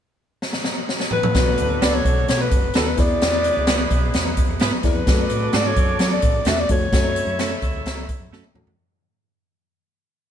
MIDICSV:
0, 0, Header, 1, 7, 480
1, 0, Start_track
1, 0, Tempo, 465116
1, 1396, Time_signature, 4, 2, 24, 8
1, 10632, End_track
2, 0, Start_track
2, 0, Title_t, "Alto saxophone"
2, 0, Program_c, 0, 65
2, 1164, Note_on_c, 0, 71, 98
2, 1882, Note_on_c, 0, 74, 91
2, 1897, Note_off_c, 0, 71, 0
2, 2009, Note_on_c, 0, 73, 105
2, 2024, Note_off_c, 0, 74, 0
2, 2363, Note_off_c, 0, 73, 0
2, 2375, Note_on_c, 0, 73, 104
2, 2494, Note_on_c, 0, 71, 89
2, 2509, Note_off_c, 0, 73, 0
2, 2846, Note_on_c, 0, 69, 81
2, 2861, Note_off_c, 0, 71, 0
2, 2981, Note_on_c, 0, 71, 83
2, 2997, Note_off_c, 0, 69, 0
2, 3085, Note_on_c, 0, 74, 104
2, 3101, Note_off_c, 0, 71, 0
2, 4520, Note_off_c, 0, 74, 0
2, 5025, Note_on_c, 0, 71, 87
2, 5731, Note_on_c, 0, 74, 95
2, 5747, Note_off_c, 0, 71, 0
2, 5853, Note_on_c, 0, 73, 99
2, 5869, Note_off_c, 0, 74, 0
2, 6203, Note_off_c, 0, 73, 0
2, 6212, Note_on_c, 0, 73, 86
2, 6262, Note_off_c, 0, 73, 0
2, 6325, Note_on_c, 0, 74, 84
2, 6689, Note_on_c, 0, 76, 102
2, 6704, Note_off_c, 0, 74, 0
2, 6812, Note_on_c, 0, 74, 91
2, 6827, Note_off_c, 0, 76, 0
2, 6922, Note_off_c, 0, 74, 0
2, 6936, Note_on_c, 0, 73, 106
2, 8323, Note_off_c, 0, 73, 0
2, 10632, End_track
3, 0, Start_track
3, 0, Title_t, "Horn section"
3, 0, Program_c, 1, 61
3, 1398, Note_on_c, 1, 62, 71
3, 1401, Note_on_c, 1, 66, 73
3, 1406, Note_on_c, 1, 57, 67
3, 1406, Note_on_c, 1, 69, 73
3, 2810, Note_off_c, 1, 62, 0
3, 2811, Note_off_c, 1, 66, 0
3, 2814, Note_off_c, 1, 57, 0
3, 2814, Note_off_c, 1, 69, 0
3, 3076, Note_on_c, 1, 59, 78
3, 3076, Note_on_c, 1, 71, 85
3, 3082, Note_on_c, 1, 64, 71
3, 3086, Note_on_c, 1, 68, 76
3, 4956, Note_off_c, 1, 59, 0
3, 4956, Note_off_c, 1, 71, 0
3, 4959, Note_off_c, 1, 64, 0
3, 4961, Note_off_c, 1, 68, 0
3, 5226, Note_on_c, 1, 62, 83
3, 5226, Note_on_c, 1, 66, 80
3, 5226, Note_on_c, 1, 74, 90
3, 5227, Note_on_c, 1, 69, 77
3, 6874, Note_off_c, 1, 62, 0
3, 6874, Note_off_c, 1, 66, 0
3, 6874, Note_off_c, 1, 74, 0
3, 6875, Note_off_c, 1, 69, 0
3, 7144, Note_on_c, 1, 64, 81
3, 7144, Note_on_c, 1, 76, 88
3, 7145, Note_on_c, 1, 73, 77
3, 7152, Note_on_c, 1, 69, 80
3, 8795, Note_off_c, 1, 64, 0
3, 8795, Note_off_c, 1, 73, 0
3, 8795, Note_off_c, 1, 76, 0
3, 8799, Note_off_c, 1, 69, 0
3, 10632, End_track
4, 0, Start_track
4, 0, Title_t, "Reed electric piano"
4, 0, Program_c, 2, 4
4, 1391, Note_on_c, 2, 59, 78
4, 1398, Note_on_c, 2, 62, 69
4, 1405, Note_on_c, 2, 66, 70
4, 1408, Note_on_c, 2, 71, 84
4, 2061, Note_off_c, 2, 59, 0
4, 2065, Note_off_c, 2, 62, 0
4, 2068, Note_off_c, 2, 66, 0
4, 2069, Note_off_c, 2, 71, 0
4, 3064, Note_on_c, 2, 59, 75
4, 3067, Note_on_c, 2, 64, 62
4, 3076, Note_on_c, 2, 68, 71
4, 3078, Note_on_c, 2, 71, 83
4, 3838, Note_off_c, 2, 59, 0
4, 3840, Note_off_c, 2, 64, 0
4, 3844, Note_off_c, 2, 68, 0
4, 3845, Note_off_c, 2, 71, 0
4, 4983, Note_on_c, 2, 59, 71
4, 4992, Note_on_c, 2, 64, 66
4, 4999, Note_on_c, 2, 68, 65
4, 5003, Note_on_c, 2, 74, 79
4, 5155, Note_off_c, 2, 59, 0
4, 5160, Note_off_c, 2, 64, 0
4, 5163, Note_off_c, 2, 68, 0
4, 5165, Note_off_c, 2, 74, 0
4, 5227, Note_on_c, 2, 57, 68
4, 5234, Note_on_c, 2, 62, 63
4, 5240, Note_on_c, 2, 66, 64
4, 5245, Note_on_c, 2, 68, 60
4, 5297, Note_off_c, 2, 68, 0
4, 5301, Note_on_c, 2, 69, 76
4, 5896, Note_off_c, 2, 57, 0
4, 5899, Note_off_c, 2, 62, 0
4, 5902, Note_off_c, 2, 66, 0
4, 5933, Note_off_c, 2, 69, 0
4, 6906, Note_on_c, 2, 57, 73
4, 6910, Note_on_c, 2, 62, 67
4, 6918, Note_on_c, 2, 66, 68
4, 6922, Note_on_c, 2, 69, 71
4, 7075, Note_off_c, 2, 57, 0
4, 7077, Note_off_c, 2, 62, 0
4, 7082, Note_off_c, 2, 66, 0
4, 7084, Note_off_c, 2, 69, 0
4, 7141, Note_on_c, 2, 57, 70
4, 7151, Note_on_c, 2, 61, 68
4, 7155, Note_on_c, 2, 66, 66
4, 7163, Note_on_c, 2, 69, 78
4, 7812, Note_off_c, 2, 57, 0
4, 7817, Note_off_c, 2, 61, 0
4, 7819, Note_off_c, 2, 66, 0
4, 7823, Note_off_c, 2, 69, 0
4, 8814, Note_on_c, 2, 57, 77
4, 8822, Note_on_c, 2, 61, 76
4, 8831, Note_on_c, 2, 66, 76
4, 8831, Note_on_c, 2, 69, 83
4, 8990, Note_off_c, 2, 57, 0
4, 8994, Note_off_c, 2, 61, 0
4, 8999, Note_off_c, 2, 66, 0
4, 8999, Note_off_c, 2, 69, 0
4, 10632, End_track
5, 0, Start_track
5, 0, Title_t, "Clean electric guitar"
5, 0, Program_c, 3, 27
5, 1876, Note_on_c, 3, 59, 81
5, 1883, Note_on_c, 3, 62, 75
5, 1886, Note_on_c, 3, 66, 70
5, 1890, Note_on_c, 3, 71, 90
5, 1981, Note_off_c, 3, 59, 0
5, 1984, Note_off_c, 3, 62, 0
5, 1986, Note_off_c, 3, 66, 0
5, 1988, Note_off_c, 3, 71, 0
5, 2841, Note_on_c, 3, 59, 72
5, 2849, Note_on_c, 3, 62, 82
5, 2853, Note_on_c, 3, 66, 83
5, 2858, Note_on_c, 3, 71, 86
5, 2943, Note_off_c, 3, 59, 0
5, 2948, Note_off_c, 3, 62, 0
5, 2949, Note_off_c, 3, 66, 0
5, 2952, Note_off_c, 3, 71, 0
5, 3802, Note_on_c, 3, 59, 80
5, 3810, Note_on_c, 3, 64, 87
5, 3814, Note_on_c, 3, 68, 71
5, 3821, Note_on_c, 3, 71, 82
5, 3903, Note_off_c, 3, 59, 0
5, 3907, Note_off_c, 3, 64, 0
5, 3910, Note_off_c, 3, 68, 0
5, 3913, Note_off_c, 3, 71, 0
5, 4756, Note_on_c, 3, 59, 74
5, 4764, Note_on_c, 3, 64, 84
5, 4771, Note_on_c, 3, 68, 85
5, 4776, Note_on_c, 3, 71, 82
5, 4859, Note_off_c, 3, 59, 0
5, 4864, Note_off_c, 3, 64, 0
5, 4867, Note_off_c, 3, 68, 0
5, 4869, Note_off_c, 3, 71, 0
5, 5713, Note_on_c, 3, 57, 76
5, 5717, Note_on_c, 3, 62, 89
5, 5723, Note_on_c, 3, 66, 92
5, 5729, Note_on_c, 3, 69, 84
5, 5817, Note_off_c, 3, 57, 0
5, 5819, Note_off_c, 3, 62, 0
5, 5822, Note_off_c, 3, 66, 0
5, 5825, Note_off_c, 3, 69, 0
5, 6673, Note_on_c, 3, 57, 86
5, 6681, Note_on_c, 3, 62, 88
5, 6687, Note_on_c, 3, 66, 84
5, 6689, Note_on_c, 3, 69, 93
5, 6777, Note_off_c, 3, 57, 0
5, 6781, Note_off_c, 3, 62, 0
5, 6783, Note_off_c, 3, 66, 0
5, 6785, Note_off_c, 3, 69, 0
5, 7632, Note_on_c, 3, 57, 75
5, 7636, Note_on_c, 3, 61, 87
5, 7644, Note_on_c, 3, 66, 76
5, 7646, Note_on_c, 3, 69, 79
5, 7736, Note_off_c, 3, 57, 0
5, 7738, Note_off_c, 3, 61, 0
5, 7742, Note_off_c, 3, 66, 0
5, 7743, Note_off_c, 3, 69, 0
5, 8592, Note_on_c, 3, 57, 72
5, 8598, Note_on_c, 3, 61, 78
5, 8602, Note_on_c, 3, 66, 80
5, 8605, Note_on_c, 3, 69, 85
5, 8696, Note_off_c, 3, 57, 0
5, 8699, Note_off_c, 3, 61, 0
5, 8701, Note_off_c, 3, 66, 0
5, 8703, Note_off_c, 3, 69, 0
5, 10632, End_track
6, 0, Start_track
6, 0, Title_t, "Fingered electric bass"
6, 0, Program_c, 4, 33
6, 1388, Note_on_c, 4, 35, 90
6, 1579, Note_off_c, 4, 35, 0
6, 1630, Note_on_c, 4, 38, 78
6, 1821, Note_off_c, 4, 38, 0
6, 1874, Note_on_c, 4, 37, 80
6, 2064, Note_off_c, 4, 37, 0
6, 2116, Note_on_c, 4, 35, 88
6, 2305, Note_off_c, 4, 35, 0
6, 2358, Note_on_c, 4, 47, 89
6, 2546, Note_off_c, 4, 47, 0
6, 2598, Note_on_c, 4, 30, 83
6, 2786, Note_off_c, 4, 30, 0
6, 2840, Note_on_c, 4, 39, 79
6, 3027, Note_off_c, 4, 39, 0
6, 3074, Note_on_c, 4, 40, 90
6, 3263, Note_off_c, 4, 40, 0
6, 3324, Note_on_c, 4, 40, 85
6, 3603, Note_off_c, 4, 40, 0
6, 3683, Note_on_c, 4, 37, 74
6, 3962, Note_off_c, 4, 37, 0
6, 4033, Note_on_c, 4, 35, 87
6, 4222, Note_off_c, 4, 35, 0
6, 4273, Note_on_c, 4, 40, 87
6, 4555, Note_off_c, 4, 40, 0
6, 4631, Note_on_c, 4, 40, 74
6, 4726, Note_off_c, 4, 40, 0
6, 4756, Note_on_c, 4, 44, 76
6, 4850, Note_off_c, 4, 44, 0
6, 4996, Note_on_c, 4, 40, 89
6, 5089, Note_off_c, 4, 40, 0
6, 5110, Note_on_c, 4, 41, 77
6, 5206, Note_off_c, 4, 41, 0
6, 5231, Note_on_c, 4, 42, 99
6, 5420, Note_off_c, 4, 42, 0
6, 5471, Note_on_c, 4, 45, 74
6, 5660, Note_off_c, 4, 45, 0
6, 5712, Note_on_c, 4, 44, 100
6, 5900, Note_off_c, 4, 44, 0
6, 5951, Note_on_c, 4, 42, 88
6, 6139, Note_off_c, 4, 42, 0
6, 6183, Note_on_c, 4, 54, 91
6, 6374, Note_off_c, 4, 54, 0
6, 6431, Note_on_c, 4, 33, 78
6, 6619, Note_off_c, 4, 33, 0
6, 6665, Note_on_c, 4, 40, 82
6, 6856, Note_off_c, 4, 40, 0
6, 6910, Note_on_c, 4, 41, 83
6, 7099, Note_off_c, 4, 41, 0
6, 7147, Note_on_c, 4, 42, 90
6, 7430, Note_off_c, 4, 42, 0
6, 7496, Note_on_c, 4, 42, 81
6, 7784, Note_off_c, 4, 42, 0
6, 7864, Note_on_c, 4, 38, 80
6, 8055, Note_off_c, 4, 38, 0
6, 8100, Note_on_c, 4, 37, 76
6, 8386, Note_off_c, 4, 37, 0
6, 8462, Note_on_c, 4, 42, 79
6, 8560, Note_off_c, 4, 42, 0
6, 8581, Note_on_c, 4, 42, 81
6, 8679, Note_off_c, 4, 42, 0
6, 8816, Note_on_c, 4, 40, 90
6, 8916, Note_off_c, 4, 40, 0
6, 8934, Note_on_c, 4, 41, 80
6, 9035, Note_off_c, 4, 41, 0
6, 10632, End_track
7, 0, Start_track
7, 0, Title_t, "Drums"
7, 435, Note_on_c, 9, 38, 64
7, 538, Note_off_c, 9, 38, 0
7, 549, Note_on_c, 9, 38, 66
7, 652, Note_off_c, 9, 38, 0
7, 666, Note_on_c, 9, 38, 72
7, 769, Note_off_c, 9, 38, 0
7, 919, Note_on_c, 9, 38, 75
7, 1022, Note_off_c, 9, 38, 0
7, 1034, Note_on_c, 9, 38, 79
7, 1138, Note_off_c, 9, 38, 0
7, 1145, Note_on_c, 9, 45, 75
7, 1248, Note_off_c, 9, 45, 0
7, 1273, Note_on_c, 9, 45, 105
7, 1376, Note_off_c, 9, 45, 0
7, 1388, Note_on_c, 9, 42, 74
7, 1391, Note_on_c, 9, 36, 97
7, 1396, Note_on_c, 9, 38, 91
7, 1491, Note_off_c, 9, 42, 0
7, 1494, Note_off_c, 9, 36, 0
7, 1499, Note_off_c, 9, 38, 0
7, 1627, Note_on_c, 9, 42, 66
7, 1730, Note_off_c, 9, 42, 0
7, 1878, Note_on_c, 9, 42, 90
7, 1881, Note_on_c, 9, 38, 98
7, 1982, Note_off_c, 9, 42, 0
7, 1984, Note_off_c, 9, 38, 0
7, 2118, Note_on_c, 9, 36, 90
7, 2120, Note_on_c, 9, 42, 70
7, 2221, Note_off_c, 9, 36, 0
7, 2224, Note_off_c, 9, 42, 0
7, 2357, Note_on_c, 9, 42, 70
7, 2367, Note_on_c, 9, 38, 94
7, 2461, Note_off_c, 9, 42, 0
7, 2470, Note_off_c, 9, 38, 0
7, 2594, Note_on_c, 9, 42, 69
7, 2596, Note_on_c, 9, 36, 90
7, 2697, Note_off_c, 9, 42, 0
7, 2699, Note_off_c, 9, 36, 0
7, 2824, Note_on_c, 9, 42, 67
7, 2842, Note_on_c, 9, 38, 104
7, 2927, Note_off_c, 9, 42, 0
7, 2945, Note_off_c, 9, 38, 0
7, 3070, Note_on_c, 9, 42, 61
7, 3076, Note_on_c, 9, 36, 90
7, 3082, Note_on_c, 9, 38, 29
7, 3173, Note_off_c, 9, 42, 0
7, 3179, Note_off_c, 9, 36, 0
7, 3185, Note_off_c, 9, 38, 0
7, 3318, Note_on_c, 9, 42, 73
7, 3326, Note_on_c, 9, 38, 106
7, 3422, Note_off_c, 9, 42, 0
7, 3429, Note_off_c, 9, 38, 0
7, 3552, Note_on_c, 9, 42, 78
7, 3655, Note_off_c, 9, 42, 0
7, 3787, Note_on_c, 9, 42, 89
7, 3790, Note_on_c, 9, 38, 112
7, 3891, Note_off_c, 9, 42, 0
7, 3893, Note_off_c, 9, 38, 0
7, 4031, Note_on_c, 9, 42, 70
7, 4034, Note_on_c, 9, 36, 84
7, 4134, Note_off_c, 9, 42, 0
7, 4137, Note_off_c, 9, 36, 0
7, 4269, Note_on_c, 9, 42, 75
7, 4278, Note_on_c, 9, 38, 100
7, 4372, Note_off_c, 9, 42, 0
7, 4381, Note_off_c, 9, 38, 0
7, 4509, Note_on_c, 9, 42, 68
7, 4515, Note_on_c, 9, 36, 85
7, 4612, Note_off_c, 9, 42, 0
7, 4618, Note_off_c, 9, 36, 0
7, 4742, Note_on_c, 9, 42, 66
7, 4760, Note_on_c, 9, 38, 92
7, 4845, Note_off_c, 9, 42, 0
7, 4863, Note_off_c, 9, 38, 0
7, 4986, Note_on_c, 9, 42, 59
7, 4995, Note_on_c, 9, 36, 80
7, 4998, Note_on_c, 9, 38, 28
7, 5089, Note_off_c, 9, 42, 0
7, 5098, Note_off_c, 9, 36, 0
7, 5101, Note_off_c, 9, 38, 0
7, 5232, Note_on_c, 9, 42, 82
7, 5234, Note_on_c, 9, 36, 106
7, 5240, Note_on_c, 9, 38, 90
7, 5335, Note_off_c, 9, 42, 0
7, 5337, Note_off_c, 9, 36, 0
7, 5343, Note_off_c, 9, 38, 0
7, 5465, Note_on_c, 9, 42, 72
7, 5568, Note_off_c, 9, 42, 0
7, 5705, Note_on_c, 9, 42, 90
7, 5708, Note_on_c, 9, 38, 93
7, 5809, Note_off_c, 9, 42, 0
7, 5811, Note_off_c, 9, 38, 0
7, 5949, Note_on_c, 9, 42, 67
7, 5951, Note_on_c, 9, 36, 92
7, 6052, Note_off_c, 9, 42, 0
7, 6054, Note_off_c, 9, 36, 0
7, 6183, Note_on_c, 9, 42, 73
7, 6192, Note_on_c, 9, 38, 100
7, 6286, Note_off_c, 9, 42, 0
7, 6296, Note_off_c, 9, 38, 0
7, 6421, Note_on_c, 9, 42, 67
7, 6429, Note_on_c, 9, 36, 89
7, 6524, Note_off_c, 9, 42, 0
7, 6532, Note_off_c, 9, 36, 0
7, 6656, Note_on_c, 9, 42, 71
7, 6674, Note_on_c, 9, 38, 98
7, 6759, Note_off_c, 9, 42, 0
7, 6777, Note_off_c, 9, 38, 0
7, 6904, Note_on_c, 9, 42, 57
7, 6910, Note_on_c, 9, 36, 75
7, 7007, Note_off_c, 9, 42, 0
7, 7014, Note_off_c, 9, 36, 0
7, 7148, Note_on_c, 9, 36, 98
7, 7148, Note_on_c, 9, 42, 77
7, 7155, Note_on_c, 9, 38, 90
7, 7251, Note_off_c, 9, 36, 0
7, 7251, Note_off_c, 9, 42, 0
7, 7258, Note_off_c, 9, 38, 0
7, 7389, Note_on_c, 9, 42, 69
7, 7492, Note_off_c, 9, 42, 0
7, 7627, Note_on_c, 9, 42, 94
7, 7630, Note_on_c, 9, 38, 102
7, 7731, Note_off_c, 9, 42, 0
7, 7733, Note_off_c, 9, 38, 0
7, 7865, Note_on_c, 9, 42, 75
7, 7867, Note_on_c, 9, 36, 85
7, 7968, Note_off_c, 9, 42, 0
7, 7970, Note_off_c, 9, 36, 0
7, 8108, Note_on_c, 9, 42, 68
7, 8118, Note_on_c, 9, 38, 102
7, 8211, Note_off_c, 9, 42, 0
7, 8221, Note_off_c, 9, 38, 0
7, 8348, Note_on_c, 9, 36, 88
7, 8348, Note_on_c, 9, 42, 65
7, 8451, Note_off_c, 9, 36, 0
7, 8451, Note_off_c, 9, 42, 0
7, 8593, Note_on_c, 9, 38, 47
7, 8696, Note_off_c, 9, 38, 0
7, 8710, Note_on_c, 9, 48, 49
7, 8814, Note_off_c, 9, 48, 0
7, 8828, Note_on_c, 9, 45, 78
7, 8931, Note_off_c, 9, 45, 0
7, 8948, Note_on_c, 9, 43, 83
7, 9051, Note_off_c, 9, 43, 0
7, 10632, End_track
0, 0, End_of_file